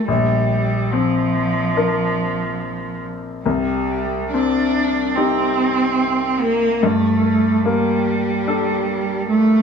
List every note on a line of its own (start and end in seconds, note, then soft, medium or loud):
0.08 3.41 A#1 soft
0.08 0.93 G3 soft
0.92 3.02 F3 soft
0.92 2.27 C4 soft
1.77 3.41 D4 soft
1.77 3.41 A#4 soft
3.45 6.79 C2 soft
3.45 4.29 G3 medium
4.32 5.67 C4 soft
4.32 5.17 D4 medium
5.15 6.41 C4 medium
5.15 6.79 D#4 soft
5.15 6.79 G4 soft
6.40 6.83 A#3 medium
6.82 9.62 G2 soft
6.82 7.64 A3 medium
7.63 9.29 G3 medium
7.63 8.97 A#3 soft
8.47 9.62 D4 soft
8.47 9.62 A4 soft
9.30 9.62 A3 medium